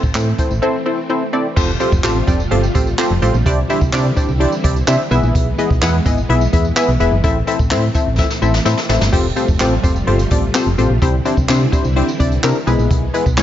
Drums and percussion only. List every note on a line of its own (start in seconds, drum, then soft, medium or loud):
0.03 kick medium
0.03 tambourine soft
0.15 snare medium
0.15 clap loud
0.15 closed hi-hat loud
0.15 tambourine medium
0.38 kick loud
0.38 closed hi-hat medium
0.38 tambourine medium
0.51 tambourine soft
1.57 kick loud
1.57 crash loud
1.57 tambourine medium
1.80 closed hi-hat medium
1.80 tambourine soft
1.92 kick loud
1.92 tambourine soft
2.04 snare medium
2.04 clap loud
2.04 closed hi-hat medium
2.04 tambourine medium
2.28 kick loud
2.28 closed hi-hat medium
2.28 tambourine medium
2.40 tambourine soft
2.51 closed hi-hat medium
2.63 tambourine medium
2.75 kick loud
2.75 closed hi-hat loud
2.75 tambourine medium
2.87 tambourine soft
2.99 snare medium
2.99 clap loud
2.99 closed hi-hat medium
2.99 tambourine loud
3.22 closed hi-hat medium
3.22 tambourine medium
3.34 tambourine soft
3.46 kick loud
3.46 closed hi-hat loud
3.46 tambourine soft
3.70 closed hi-hat medium
3.70 tambourine soft
3.81 kick loud
3.81 tambourine soft
3.93 snare medium
3.93 clap loud
3.93 closed hi-hat medium
3.93 tambourine medium
4.17 kick loud
4.17 closed hi-hat medium
4.17 tambourine medium
4.29 tambourine soft
4.40 closed hi-hat loud
4.52 tambourine medium
4.64 kick loud
4.64 closed hi-hat loud
4.64 tambourine soft
4.76 tambourine soft
4.88 snare medium
4.88 clap loud
4.88 closed hi-hat medium
4.88 tambourine medium
5.11 closed hi-hat medium
5.11 tambourine medium
5.23 tambourine soft
5.35 kick loud
5.35 closed hi-hat loud
5.35 tambourine medium
5.58 closed hi-hat medium
5.58 tambourine soft
5.70 kick loud
5.82 snare medium
5.82 clap loud
5.82 closed hi-hat loud
5.82 tambourine medium
6.06 kick loud
6.06 closed hi-hat medium
6.06 tambourine medium
6.18 tambourine soft
6.30 closed hi-hat loud
6.41 tambourine medium
6.53 kick loud
6.53 closed hi-hat loud
6.53 tambourine soft
6.65 tambourine soft
6.77 snare medium
6.77 clap loud
6.77 closed hi-hat medium
6.77 tambourine medium
7.00 closed hi-hat medium
7.00 tambourine medium
7.24 kick loud
7.24 closed hi-hat loud
7.24 tambourine soft
7.47 closed hi-hat medium
7.47 tambourine soft
7.59 kick medium
7.59 tambourine soft
7.71 snare medium
7.71 clap loud
7.71 closed hi-hat loud
7.71 tambourine medium
7.95 kick loud
7.95 closed hi-hat medium
7.95 tambourine medium
8.18 kick loud
8.18 snare medium
8.30 snare medium
8.30 tambourine medium
8.42 tambourine medium
8.54 snare medium
8.66 snare loud
8.66 tambourine medium
8.78 snare medium
8.89 snare loud
8.89 tambourine medium
9.01 snare loud
9.13 kick loud
9.13 tambourine medium
9.13 crash medium
9.36 closed hi-hat medium
9.36 tambourine soft
9.48 kick loud
9.48 tambourine soft
9.60 snare medium
9.60 clap loud
9.60 closed hi-hat loud
9.60 tambourine medium
9.84 kick loud
9.84 closed hi-hat medium
9.84 tambourine medium
9.96 tambourine soft
10.07 closed hi-hat medium
10.19 closed hi-hat medium
10.19 tambourine medium
10.31 kick loud
10.31 closed hi-hat loud
10.31 tambourine soft
10.55 snare medium
10.55 clap loud
10.55 closed hi-hat loud
10.55 tambourine loud
10.78 closed hi-hat medium
10.78 tambourine medium
11.02 kick loud
11.02 closed hi-hat loud
11.02 tambourine medium
11.25 closed hi-hat medium
11.25 tambourine soft
11.37 kick medium
11.37 tambourine soft
11.49 snare medium
11.49 clap loud
11.49 closed hi-hat medium
11.49 tambourine medium
11.73 kick loud
11.73 closed hi-hat medium
11.73 tambourine medium
11.84 tambourine soft
11.96 closed hi-hat loud
12.08 tambourine medium
12.20 kick loud
12.20 closed hi-hat loud
12.20 tambourine medium
12.32 closed hi-hat medium
12.32 tambourine soft
12.44 snare medium
12.44 clap loud
12.44 closed hi-hat medium
12.44 tambourine medium
12.67 closed hi-hat medium
12.67 tambourine medium
12.79 tambourine soft
12.91 kick loud
12.91 closed hi-hat loud
12.91 tambourine soft
13.14 closed hi-hat medium
13.14 tambourine medium
13.26 kick medium
13.26 tambourine soft
13.38 snare medium
13.38 clap loud
13.38 closed hi-hat loud
13.38 tambourine medium